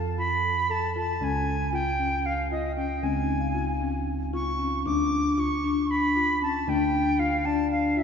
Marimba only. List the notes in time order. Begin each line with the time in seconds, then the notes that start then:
Already playing: A4
0.18 F4
0.70 A4
0.96 F4
1.21 C#4
1.73 F4
1.99 C#4
2.51 F4
2.77 C#4
3.03 C#4
3.55 F4
3.80 C#4
4.33 F4
4.59 C#4
4.86 D4
5.38 F4
5.64 D4
6.16 F4
6.42 C#4
6.67 D4
7.19 F4
7.45 D4
7.97 F4